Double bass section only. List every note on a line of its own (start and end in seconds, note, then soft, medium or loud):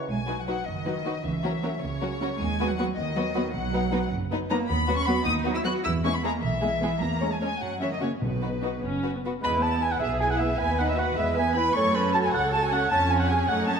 0.08 0.55 B1 medium
0.67 1.13 F#1 soft
1.25 1.71 C#2 medium
1.82 2.28 C#2 soft
2.40 2.85 D#2 medium
2.98 3.43 D#2 medium
3.55 4.00 B1 medium
4.13 4.58 F#1 medium
4.70 5.15 D#2 medium
5.26 5.72 D#2 medium
5.86 6.31 E2 medium
6.44 6.89 B1 medium
7.01 7.48 E2 medium
7.61 8.09 F#2 medium
8.22 8.70 B1 medium
8.82 9.31 F#1 soft
9.43 9.92 E2 medium
10.02 10.51 B1 medium
10.60 11.09 D#2 medium
11.18 11.66 E2 medium
11.76 12.24 F#2 medium
12.33 12.82 C#2 medium
12.91 13.40 F2 medium
13.49 13.80 F#2 medium